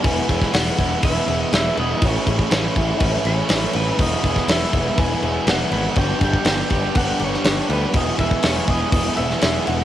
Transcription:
Already playing: clean electric guitar B4
0.02 picked electric bass E1, overdriven electric guitar E2 B2 E3 G#3 B3 E4, clean electric guitar F#4 G#5, kick, crash
0.28 picked electric bass E1, overdriven electric guitar E3 G#3 B3 E4, clean electric guitar G#4, kick, crash
0.42 kick, snare
0.51 picked electric bass E1, overdriven electric guitar E3 G#3 B3 E4, clean electric guitar B4 F#5, snare, crash
0.77 picked electric bass E1, overdriven electric guitar E3 G#3 B3 E4, clean electric guitar G#4, kick, crash
1.02 picked electric bass E1, overdriven electric guitar E2 B2 E3 G#3 B3 E4, clean electric guitar B4 E5, kick, crash
1.28 picked electric bass E1, overdriven electric guitar E3 G#3 B3 E4, clean electric guitar G#4, crash
1.41 clean electric guitar D#5
1.52 picked electric bass E1, overdriven electric guitar E3 G#3 B3 E4, clean electric guitar B4 E5, snare, crash
1.77 picked electric bass E1, overdriven electric guitar E3 G#3 B3 E4, clean electric guitar D#5 E5, crash
2.02 picked electric bass A1, overdriven electric guitar A2 E3 A3 C#4 E4, clean electric guitar F#4 C#5, kick, crash
2.26 picked electric bass A1, overdriven electric guitar A3 C#4 E4, clean electric guitar G#4, kick, crash
2.39 kick
2.51 picked electric bass A1, overdriven electric guitar E3 A3 C#4 E4, clean electric guitar B4 C#5, snare, crash
2.76 picked electric bass A1, overdriven electric guitar A3 C#4 E4, clean electric guitar G#4, kick, crash
3.00 picked electric bass A1, overdriven electric guitar A2 E3 A3 C#4 E4, clean electric guitar B4, kick, crash
3.25 picked electric bass A1, overdriven electric guitar A3 C#4 E4, clean electric guitar G#4 C#5, crash
3.49 picked electric bass A1, overdriven electric guitar E3 A3 C#4 E4, clean electric guitar B4, snare, crash
3.73 picked electric bass A1, overdriven electric guitar A3 C#4 E4, clean electric guitar B4 E5, crash
3.99 picked electric bass E1, overdriven electric guitar E2 B2 E3 G#3 B3 E4, clean electric guitar F#4 D#5, kick, crash
4.24 picked electric bass E1, overdriven electric guitar E3 G#3 B3 E4, clean electric guitar G#4, kick, crash
4.36 kick, snare
4.48 picked electric bass E1, overdriven electric guitar E3 G#3 B3 E4, clean electric guitar B4 E5, snare, crash
4.73 picked electric bass E1, overdriven electric guitar E3 G#3 B3 E4, clean electric guitar G#4, kick, crash
4.98 picked electric bass E1, overdriven electric guitar E2 B2 E3 G#3 B3 E4, clean electric guitar B4 G#5, kick, crash
5.22 picked electric bass E1, overdriven electric guitar G#3 B3 E4, clean electric guitar G#4, crash
5.26 overdriven electric guitar E3
5.47 picked electric bass E1, overdriven electric guitar E3 G#3 B3 E4, clean electric guitar B4 F#5, snare, crash
5.71 picked electric bass G#1, overdriven electric guitar E3 G#3 B3 E4, clean electric guitar E5, crash
5.95 picked electric bass G1, overdriven electric guitar G2 D3 G3 B3 D4, clean electric guitar F#4 G5, kick, crash
6.00 overdriven electric guitar G4
6.21 picked electric bass G1, overdriven electric guitar B3 D4 G4, clean electric guitar G4 G5, kick, crash
6.25 overdriven electric guitar G3
6.33 kick
6.45 picked electric bass G1, overdriven electric guitar D3 G3 B3, clean electric guitar B4 G5, snare, crash
6.49 overdriven electric guitar D4 G4
6.70 picked electric bass G1, overdriven electric guitar G3 B3 D4 G4, clean electric guitar G4, kick, crash
6.95 picked electric bass G1, overdriven electric guitar G2 D3 G3 B3 D4 G4, clean electric guitar B4 F#5, kick, crash
7.19 picked electric bass G1, overdriven electric guitar G3 B3 D4 G4, clean electric guitar G4, crash
7.24 clean electric guitar C#5
7.34 snare
7.44 picked electric bass G1, overdriven electric guitar D3 G3 B3 D4, clean electric guitar B4, snare, crash
7.49 overdriven electric guitar G4
7.69 picked electric bass D2, overdriven electric guitar G3 B3 D4 G4, clean electric guitar B4 E5, crash
7.93 picked electric bass E1, overdriven electric guitar E2 B2 E3 G#3 B3 E4 G#4, clean electric guitar F#4 D#5, kick, crash
8.18 picked electric bass E1, overdriven electric guitar E3 G#3 B3 E4 G#4, clean electric guitar G#4 E5, kick, crash
8.31 kick
8.43 picked electric bass E1, overdriven electric guitar E3 G#3 B3 E4 G#4, clean electric guitar B4, snare, crash
8.47 clean electric guitar C#5
8.67 picked electric bass E1, overdriven electric guitar E3 G#3 B3 E4 G#4, clean electric guitar G#4 D#5, kick, crash
8.91 picked electric bass E1, overdriven electric guitar E2 B2 E3 G#3 B3 E4 G#4, clean electric guitar B4 D#5, kick, crash
9.17 picked electric bass E1, overdriven electric guitar E3 G#3 B3 E4 G#4, clean electric guitar G#4 E5, crash
9.30 snare
9.40 picked electric bass E1, overdriven electric guitar E3 G#3 B3 E4, clean electric guitar B4, snare, crash
9.45 overdriven electric guitar G#4
9.66 picked electric bass E1, overdriven electric guitar E3 G#3 B3 E4 G#4, clean electric guitar E5 F#5, crash

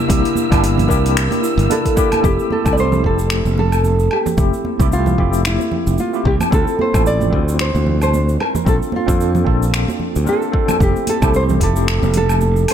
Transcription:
Already playing: analog synth pad C3 A#3 E4, tine electric piano A#3 D4 E4 G4, nylon-string guitar E5, synth texture E6
0.08 fingered electric bass C2, tine electric piano A#3 D4 E4 G4, kalimba E4, kick, open hi-hat, cabasa
0.25 open hi-hat
0.36 high conga, cabasa
0.50 fingered electric bass G1, tine electric piano A#3 D4 E4 G4, kick, open hi-hat, cabasa, low woodblock
0.64 open hi-hat, cabasa
0.72 nylon-string guitar D5
0.78 open hi-hat, high conga, low conga, cabasa
0.88 fingered electric bass C2, tine electric piano A#3 D4 E4 G4, kalimba A#4, kick, cabasa
1.06 open hi-hat, cabasa
1.17 finger snap, open hi-hat, cabasa
1.31 open hi-hat, high conga, cabasa
1.43 kalimba E4, cabasa
1.58 fingered electric bass G1, open hi-hat, cabasa
1.70 tine electric piano A#3 D4 E4 A4, nylon-string guitar A4, open hi-hat, high conga, cabasa
1.86 kick, open hi-hat, cabasa
1.96 tine electric piano A#3 D4 E4 G4, kick, cabasa
2.12 open hi-hat, high conga, cabasa, low woodblock
2.22 fingered electric bass F1, tine electric piano A3 C4 E4 G4, nylon-string guitar G4, kick, cabasa
2.39 cabasa
2.51 nylon-string guitar A4, high conga
2.64 fingered electric bass C2, tine electric piano A3 C4 E4 G4, kick, cabasa, low woodblock
2.73 nylon-string guitar D5
2.78 nylon-string guitar C5, cabasa
2.92 high conga, low conga, cabasa
3.02 fingered electric bass F1, tine electric piano A3 C4 E4, kick
3.06 tine electric piano G4, nylon-string guitar A4
3.19 cabasa
3.30 finger snap, cabasa
3.45 fingered electric bass F1, high conga, cabasa
3.58 nylon-string guitar A4, low conga
3.72 cabasa, low woodblock
3.84 high conga, cabasa
3.99 cabasa
4.11 nylon-string guitar G4, low woodblock
4.26 high conga, low conga, cabasa
4.37 fingered electric bass F1, tine electric piano A3 C4 E4 G4, kick, cabasa
4.54 cabasa
4.65 high conga
4.79 fingered electric bass C2, tine electric piano A3 C4 E4 G4, kick, cabasa
4.92 nylon-string guitar F4, cabasa
5.06 high conga, low conga, cabasa
5.18 fingered electric bass F1, tine electric piano A3 C4 E4 G4, kick
5.33 cabasa
5.45 nylon-string guitar E4, finger snap, cabasa
5.59 high conga, cabasa
5.72 low conga
5.87 fingered electric bass F1, cabasa
5.98 nylon-string guitar F4, high conga, cabasa
6.13 tine electric piano A3 C4 E4 G4, cabasa
6.25 fingered electric bass C2, nylon-string guitar G4, kick
6.40 high conga, low conga, cabasa, low woodblock
6.51 fingered electric bass D2, tine electric piano C4 E4 F4 A4, nylon-string guitar A4, kick, cabasa
6.68 cabasa
6.79 nylon-string guitar C5, high conga
6.93 fingered electric bass A1, tine electric piano C4 E4 F4 A4, kick, cabasa, low woodblock
7.06 nylon-string guitar D5, cabasa
7.20 high conga, low conga, cabasa
7.30 fingered electric bass D2, tine electric piano C4 E4 F4, kick
7.36 tine electric piano A4
7.48 cabasa
7.59 nylon-string guitar C5, finger snap, cabasa
7.75 fingered electric bass D2, high conga, cabasa
7.86 low conga
8.02 nylon-string guitar C5, cabasa, low woodblock
8.14 high conga, cabasa
8.29 cabasa
8.40 nylon-string guitar A#4, low woodblock
8.55 high conga, low conga, cabasa
8.65 fingered electric bass A#1, tine electric piano C4 D4 F4 A4, nylon-string guitar A4, kick, cabasa
8.82 cabasa
8.92 nylon-string guitar F4, high conga
9.06 fingered electric bass F2, tine electric piano C4 D4 F4 A4, kick, cabasa
9.21 cabasa
9.35 high conga, low conga, cabasa
9.45 fingered electric bass A#1, tine electric piano C4 D4 F4 A4, kick
9.63 cabasa
9.74 finger snap, cabasa
9.88 high conga, cabasa
10.00 low conga
10.16 fingered electric bass D2, cabasa
10.24 tine electric piano C4 D4 F4 A#4, high conga, cabasa
10.29 nylon-string guitar A4
10.42 cabasa
10.52 tine electric piano C4 D4 F4 A4, kick
10.68 high conga, low conga, cabasa, low woodblock
10.79 fingered electric bass F1, tine electric piano A3 C4 E4 G4, nylon-string guitar G4, kick, cabasa
10.96 cabasa
11.07 nylon-string guitar A4, open hi-hat, high conga
11.21 fingered electric bass C2, tine electric piano A3 C4 E4 G4, kick, cabasa, low woodblock
11.34 nylon-string guitar C5, cabasa
11.49 high conga, low conga, cabasa
11.58 fingered electric bass F1, tine electric piano A3 C4 E4, kick, open hi-hat
11.63 tine electric piano G4, nylon-string guitar A4
11.76 cabasa
11.88 finger snap, cabasa
12.02 fingered electric bass F1, high conga, cabasa
12.14 nylon-string guitar A4, open hi-hat, low conga
12.29 cabasa, low woodblock
12.41 high conga, cabasa
12.56 cabasa
12.68 open hi-hat, low woodblock

